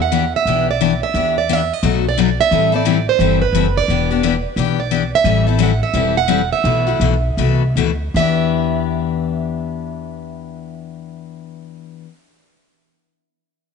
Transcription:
Already playing: upright bass E2
0.02 steel-string acoustic guitar F#5
0.12 steel-string acoustic guitar E3 B3 D4 G4
0.36 steel-string acoustic guitar E5
0.45 upright bass B1, steel-string acoustic guitar E3 B3 D4 G4
0.71 steel-string acoustic guitar D5
0.81 steel-string acoustic guitar E3 B3 D4 G4
1.03 steel-string acoustic guitar E5
1.14 upright bass E2, steel-string acoustic guitar E3 B3 D4 G4
1.38 steel-string acoustic guitar D5
1.49 steel-string acoustic guitar E3 B3 D4 G4 E5
1.73 steel-string acoustic guitar D#5
1.83 upright bass B1, steel-string acoustic guitar B2 F#3 A3 D#4 F#4
2.09 steel-string acoustic guitar D5
2.17 steel-string acoustic guitar B2 F#3 A3 D#4 F#4
2.41 steel-string acoustic guitar E5
2.51 upright bass A1, steel-string acoustic guitar E3 G3 C4 E4 A4
2.72 steel-string acoustic guitar C4 E4 A4 D5
2.85 steel-string acoustic guitar E3 G3 C4 E4 A4
3.09 steel-string acoustic guitar C5
3.19 upright bass G1, steel-string acoustic guitar E3 G3 C4 E4 A4
3.42 steel-string acoustic guitar B4
3.52 upright bass F#1, steel-string acoustic guitar E3 G3 C4 E4 A4
3.77 steel-string acoustic guitar D5
3.88 upright bass E1, steel-string acoustic guitar E3 B3 D4 G4
4.11 steel-string acoustic guitar B3 D4 G4
4.23 steel-string acoustic guitar E3 B3 D4 G4
4.56 upright bass B1, steel-string acoustic guitar E3 B3 D4 G4
4.80 steel-string acoustic guitar D5
4.91 steel-string acoustic guitar E3 B3 D4 G4
5.15 steel-string acoustic guitar E5
5.24 upright bass A1, steel-string acoustic guitar E3 G3 C4 E4 A4
5.47 steel-string acoustic guitar C4 E4 A4
5.59 steel-string acoustic guitar E3 G3 C4 E4 A4
5.63 steel-string acoustic guitar F#5
5.83 steel-string acoustic guitar E5
5.93 upright bass E1, steel-string acoustic guitar E3 G3 C4 E4 A4
6.17 steel-string acoustic guitar F#5
6.28 steel-string acoustic guitar E3 G3 C4 E4 A4
6.53 steel-string acoustic guitar E5
6.64 upright bass B1, steel-string acoustic guitar B2 E3 A3 E4 F#4
6.87 steel-string acoustic guitar A3 E4 F#4
7.00 upright bass B1, steel-string acoustic guitar B2 E3 A3 E4 F#4
7.37 upright bass C2, steel-string acoustic guitar B2 E3 A3 E4 F#4
7.76 upright bass D2, steel-string acoustic guitar B2 E3 A3 E4 F#4
8.14 upright bass E2, steel-string acoustic guitar E3 B3 D4 E5
8.19 steel-string acoustic guitar G4

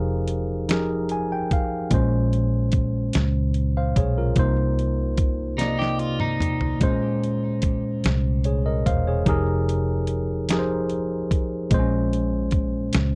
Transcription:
Already playing: fingered electric bass F1, tine electric piano F3 D#4 G4 G#4 A#4
0.28 closed hi-hat
0.68 tine electric piano F3 D#4 G4 G#4 A#4, snare, closed hi-hat
1.09 tine electric piano G#5, closed hi-hat
1.32 tine electric piano G5
1.51 tine electric piano F5, kick, closed hi-hat
1.90 fingered electric bass A#1, tine electric piano A#2 G#3 C#4 C5, kick, closed hi-hat
2.33 closed hi-hat
2.72 kick, closed hi-hat
3.13 fingered electric bass C#2, snare, closed hi-hat
3.54 closed hi-hat
3.77 tine electric piano C5 F5
3.96 fingered electric bass B1, tine electric piano G#4 C#5, kick, closed hi-hat
4.18 tine electric piano F4 A#4
4.35 fingered electric bass C2, tine electric piano C3 A#3 D#4 C5, kick, closed hi-hat
4.79 closed hi-hat
5.17 kick, closed hi-hat
5.57 tine electric piano C3 A#3 D#4 D5, clean electric guitar D#4, snare, closed hi-hat
5.68 tine electric piano D#5
5.79 clean electric guitar G4, snare
5.99 clean electric guitar F4, closed hi-hat
6.20 clean electric guitar D#4, mid tom
6.41 closed hi-hat, mid tom
6.61 floor tom
6.80 tine electric piano A#2 G#3 C#4 C5, kick, closed hi-hat
7.23 closed hi-hat
7.62 kick, closed hi-hat
8.04 fingered electric bass C2, snare, closed hi-hat
8.44 tine electric piano G#4 C#5, closed hi-hat
8.66 tine electric piano A#4 D#5
8.86 fingered electric bass E1, tine electric piano C5 F5, kick, closed hi-hat
9.07 tine electric piano G#4 C#5
9.26 fingered electric bass F1, tine electric piano F3 D#4 G4 G#4 A#4, kick, closed hi-hat
9.69 closed hi-hat
10.07 closed hi-hat
10.49 tine electric piano F3 D#4 G4 G#4, snare, closed hi-hat
10.53 tine electric piano A#4
10.59 tine electric piano C5
10.90 closed hi-hat
11.31 kick, closed hi-hat
11.70 fingered electric bass A#1, tine electric piano A#2 G#3 C4 C5, kick, closed hi-hat
11.80 tine electric piano C#4
12.13 closed hi-hat
12.51 kick, closed hi-hat
12.93 fingered electric bass C#2, snare, closed hi-hat

